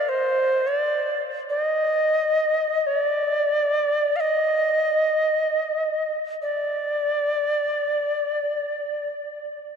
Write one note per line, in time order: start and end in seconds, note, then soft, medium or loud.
0.00 0.10 D5 medium
0.09 0.69 C5 medium
0.68 1.19 D5 medium
1.50 1.62 D5 medium
1.62 2.88 D#5 medium
2.87 4.18 D5 medium
4.16 4.21 F5 medium
4.20 6.15 D#5 medium
6.42 9.09 D5 medium